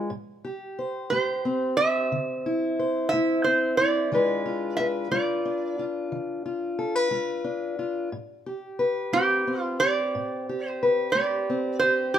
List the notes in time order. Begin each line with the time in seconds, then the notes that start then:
Already playing: G#3
0.10 A2
0.45 G4
0.79 C5
1.10 A3 G4 C5
1.45 C4
1.77 G4 E5
2.12 D3
2.46 E4
2.79 C5
3.09 A3 E5
3.14 E4
3.44 C4 C5
3.77 E4 D5
4.12 E3 G#3 D4 F4 B4
4.46 F4
4.77 B4 E5
5.11 G#3 F4 D5
5.45 D4
5.79 F4
6.12 E3
6.46 F4
6.79 A4
6.96 B4
7.11 G#3 F4
7.44 D4
7.79 F4
8.12 A2
8.46 G4
8.79 B4
9.13 A3 C4 G4
9.47 C4
9.61 F4
9.80 G4 D5
10.15 A2
10.49 G4
10.68 C5
10.83 B4
11.12 A3 G4 D5
11.50 C4
11.79 C5
11.83 G4
12.14 A4